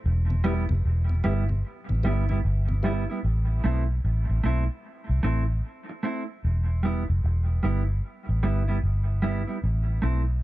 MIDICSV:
0, 0, Header, 1, 5, 480
1, 0, Start_track
1, 0, Key_signature, 0, "minor"
1, 0, Tempo, 797872
1, 29, Time_signature, 4, 2, 24, 8
1, 6276, End_track
2, 0, Start_track
2, 0, Title_t, "Clean electric guitar"
2, 0, Program_c, 0, 27
2, 264, Note_on_c, 0, 55, 91
2, 271, Note_on_c, 0, 59, 90
2, 277, Note_on_c, 0, 64, 95
2, 381, Note_off_c, 0, 55, 0
2, 384, Note_off_c, 0, 59, 0
2, 387, Note_off_c, 0, 64, 0
2, 746, Note_on_c, 0, 55, 90
2, 750, Note_on_c, 0, 59, 79
2, 756, Note_on_c, 0, 64, 89
2, 862, Note_off_c, 0, 55, 0
2, 864, Note_off_c, 0, 59, 0
2, 867, Note_off_c, 0, 64, 0
2, 1232, Note_on_c, 0, 55, 78
2, 1238, Note_on_c, 0, 59, 81
2, 1245, Note_on_c, 0, 64, 90
2, 1345, Note_off_c, 0, 55, 0
2, 1348, Note_off_c, 0, 59, 0
2, 1351, Note_off_c, 0, 64, 0
2, 1381, Note_on_c, 0, 64, 64
2, 1388, Note_on_c, 0, 59, 63
2, 1394, Note_on_c, 0, 55, 54
2, 1433, Note_off_c, 0, 64, 0
2, 1436, Note_off_c, 0, 59, 0
2, 1439, Note_off_c, 0, 55, 0
2, 1709, Note_on_c, 0, 55, 78
2, 1713, Note_on_c, 0, 59, 81
2, 1719, Note_on_c, 0, 64, 90
2, 1823, Note_off_c, 0, 55, 0
2, 1825, Note_off_c, 0, 59, 0
2, 1828, Note_off_c, 0, 64, 0
2, 1863, Note_on_c, 0, 64, 58
2, 1870, Note_on_c, 0, 59, 57
2, 1875, Note_on_c, 0, 55, 46
2, 1914, Note_off_c, 0, 64, 0
2, 1918, Note_off_c, 0, 59, 0
2, 1920, Note_off_c, 0, 55, 0
2, 2189, Note_on_c, 0, 57, 75
2, 2195, Note_on_c, 0, 60, 73
2, 2199, Note_on_c, 0, 64, 87
2, 2303, Note_off_c, 0, 57, 0
2, 2306, Note_off_c, 0, 60, 0
2, 2308, Note_off_c, 0, 64, 0
2, 2669, Note_on_c, 0, 57, 84
2, 2679, Note_on_c, 0, 60, 77
2, 2682, Note_on_c, 0, 64, 90
2, 2783, Note_off_c, 0, 57, 0
2, 2788, Note_off_c, 0, 60, 0
2, 2790, Note_off_c, 0, 64, 0
2, 3146, Note_on_c, 0, 57, 81
2, 3154, Note_on_c, 0, 60, 74
2, 3156, Note_on_c, 0, 64, 88
2, 3262, Note_off_c, 0, 57, 0
2, 3266, Note_off_c, 0, 60, 0
2, 3267, Note_off_c, 0, 64, 0
2, 3628, Note_on_c, 0, 57, 66
2, 3633, Note_on_c, 0, 60, 80
2, 3639, Note_on_c, 0, 64, 77
2, 3743, Note_off_c, 0, 57, 0
2, 3746, Note_off_c, 0, 60, 0
2, 3749, Note_off_c, 0, 64, 0
2, 4110, Note_on_c, 0, 55, 70
2, 4120, Note_on_c, 0, 59, 80
2, 4124, Note_on_c, 0, 64, 86
2, 4224, Note_off_c, 0, 55, 0
2, 4229, Note_off_c, 0, 59, 0
2, 4231, Note_off_c, 0, 64, 0
2, 4590, Note_on_c, 0, 55, 71
2, 4595, Note_on_c, 0, 59, 77
2, 4602, Note_on_c, 0, 64, 79
2, 4704, Note_off_c, 0, 55, 0
2, 4707, Note_off_c, 0, 59, 0
2, 4710, Note_off_c, 0, 64, 0
2, 5071, Note_on_c, 0, 55, 81
2, 5076, Note_on_c, 0, 59, 83
2, 5081, Note_on_c, 0, 64, 86
2, 5185, Note_off_c, 0, 55, 0
2, 5187, Note_off_c, 0, 59, 0
2, 5190, Note_off_c, 0, 64, 0
2, 5221, Note_on_c, 0, 64, 59
2, 5226, Note_on_c, 0, 59, 63
2, 5230, Note_on_c, 0, 55, 54
2, 5274, Note_off_c, 0, 64, 0
2, 5276, Note_off_c, 0, 59, 0
2, 5278, Note_off_c, 0, 55, 0
2, 5548, Note_on_c, 0, 55, 85
2, 5555, Note_on_c, 0, 59, 83
2, 5556, Note_on_c, 0, 64, 90
2, 5664, Note_off_c, 0, 55, 0
2, 5667, Note_off_c, 0, 59, 0
2, 5668, Note_off_c, 0, 64, 0
2, 5699, Note_on_c, 0, 64, 53
2, 5703, Note_on_c, 0, 59, 52
2, 5709, Note_on_c, 0, 55, 44
2, 5753, Note_off_c, 0, 64, 0
2, 5755, Note_off_c, 0, 59, 0
2, 5758, Note_off_c, 0, 55, 0
2, 6028, Note_on_c, 0, 57, 71
2, 6035, Note_on_c, 0, 60, 80
2, 6037, Note_on_c, 0, 64, 84
2, 6144, Note_off_c, 0, 57, 0
2, 6147, Note_off_c, 0, 60, 0
2, 6149, Note_off_c, 0, 64, 0
2, 6276, End_track
3, 0, Start_track
3, 0, Title_t, "Tonewheel organ"
3, 0, Program_c, 1, 16
3, 181, Note_on_c, 1, 40, 55
3, 183, Note_on_c, 1, 47, 56
3, 214, Note_off_c, 1, 40, 0
3, 215, Note_off_c, 1, 47, 0
3, 267, Note_on_c, 1, 55, 71
3, 268, Note_on_c, 1, 59, 60
3, 270, Note_on_c, 1, 64, 79
3, 325, Note_off_c, 1, 55, 0
3, 325, Note_off_c, 1, 59, 0
3, 326, Note_off_c, 1, 64, 0
3, 416, Note_on_c, 1, 40, 58
3, 417, Note_on_c, 1, 47, 55
3, 451, Note_off_c, 1, 40, 0
3, 452, Note_off_c, 1, 47, 0
3, 659, Note_on_c, 1, 40, 56
3, 659, Note_on_c, 1, 47, 51
3, 693, Note_off_c, 1, 40, 0
3, 693, Note_off_c, 1, 47, 0
3, 745, Note_on_c, 1, 59, 66
3, 746, Note_on_c, 1, 55, 78
3, 750, Note_on_c, 1, 64, 78
3, 804, Note_off_c, 1, 55, 0
3, 804, Note_off_c, 1, 59, 0
3, 806, Note_off_c, 1, 64, 0
3, 898, Note_on_c, 1, 40, 57
3, 899, Note_on_c, 1, 47, 58
3, 932, Note_off_c, 1, 40, 0
3, 933, Note_off_c, 1, 47, 0
3, 1138, Note_on_c, 1, 40, 56
3, 1140, Note_on_c, 1, 47, 55
3, 1172, Note_off_c, 1, 40, 0
3, 1173, Note_off_c, 1, 47, 0
3, 1223, Note_on_c, 1, 55, 71
3, 1226, Note_on_c, 1, 59, 61
3, 1228, Note_on_c, 1, 64, 72
3, 1283, Note_off_c, 1, 55, 0
3, 1284, Note_off_c, 1, 59, 0
3, 1285, Note_off_c, 1, 64, 0
3, 1377, Note_on_c, 1, 40, 55
3, 1379, Note_on_c, 1, 47, 52
3, 1412, Note_off_c, 1, 40, 0
3, 1413, Note_off_c, 1, 47, 0
3, 1616, Note_on_c, 1, 40, 58
3, 1616, Note_on_c, 1, 47, 64
3, 1651, Note_off_c, 1, 40, 0
3, 1651, Note_off_c, 1, 47, 0
3, 1700, Note_on_c, 1, 55, 76
3, 1702, Note_on_c, 1, 59, 64
3, 1703, Note_on_c, 1, 64, 85
3, 1761, Note_off_c, 1, 55, 0
3, 1762, Note_off_c, 1, 59, 0
3, 1763, Note_off_c, 1, 64, 0
3, 6276, End_track
4, 0, Start_track
4, 0, Title_t, "Fingered electric bass"
4, 0, Program_c, 2, 33
4, 34, Note_on_c, 2, 28, 102
4, 399, Note_off_c, 2, 28, 0
4, 424, Note_on_c, 2, 29, 79
4, 503, Note_off_c, 2, 29, 0
4, 514, Note_on_c, 2, 28, 89
4, 731, Note_off_c, 2, 28, 0
4, 756, Note_on_c, 2, 31, 90
4, 972, Note_off_c, 2, 31, 0
4, 1145, Note_on_c, 2, 33, 74
4, 1224, Note_off_c, 2, 33, 0
4, 1233, Note_on_c, 2, 31, 85
4, 1450, Note_off_c, 2, 31, 0
4, 1473, Note_on_c, 2, 31, 90
4, 1838, Note_off_c, 2, 31, 0
4, 1952, Note_on_c, 2, 33, 93
4, 2170, Note_off_c, 2, 33, 0
4, 2192, Note_on_c, 2, 35, 79
4, 2410, Note_off_c, 2, 35, 0
4, 2433, Note_on_c, 2, 33, 90
4, 2570, Note_off_c, 2, 33, 0
4, 2583, Note_on_c, 2, 33, 84
4, 2663, Note_off_c, 2, 33, 0
4, 2674, Note_on_c, 2, 35, 86
4, 2810, Note_off_c, 2, 35, 0
4, 3065, Note_on_c, 2, 36, 68
4, 3143, Note_off_c, 2, 36, 0
4, 3153, Note_on_c, 2, 33, 85
4, 3371, Note_off_c, 2, 33, 0
4, 3877, Note_on_c, 2, 28, 89
4, 4241, Note_off_c, 2, 28, 0
4, 4269, Note_on_c, 2, 29, 83
4, 4346, Note_off_c, 2, 29, 0
4, 4357, Note_on_c, 2, 28, 91
4, 4573, Note_off_c, 2, 28, 0
4, 4596, Note_on_c, 2, 31, 93
4, 4813, Note_off_c, 2, 31, 0
4, 4987, Note_on_c, 2, 33, 82
4, 5065, Note_off_c, 2, 33, 0
4, 5076, Note_on_c, 2, 31, 91
4, 5292, Note_off_c, 2, 31, 0
4, 5315, Note_on_c, 2, 31, 82
4, 5680, Note_off_c, 2, 31, 0
4, 5797, Note_on_c, 2, 33, 86
4, 6013, Note_off_c, 2, 33, 0
4, 6037, Note_on_c, 2, 35, 86
4, 6254, Note_off_c, 2, 35, 0
4, 6276, End_track
5, 0, Start_track
5, 0, Title_t, "Muted clean electric guitar strokes"
5, 3546, Note_on_c, 9, 29, 33
5, 3606, Note_off_c, 9, 29, 0
5, 6276, End_track
0, 0, End_of_file